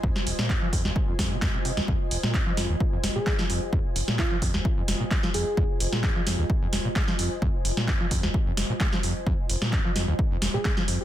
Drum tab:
HH |--o---o---o---o-|--o---o---o---o-|--o---o---o---o-|--o---o---o---o-|
CP |----x-------x---|----x-------x---|----x-------x---|----x-------x---|
SD |-o-o---o--o-o--o|---o--o---o--o--|---o---o--o--o--|---o--o---o--o--|
BD |o---o-o-o-o-o---|o---o---o---o---|o---o-o-o---o---|o---o---o---o---|

HH |--o---o---o---o-|--o---o---o---o-|
CP |----x-------x---|----x-------x---|
SD |---o---o--o--o--|---o--o---o--o--|
BD |o---o-o-o---o---|o---o---o---o---|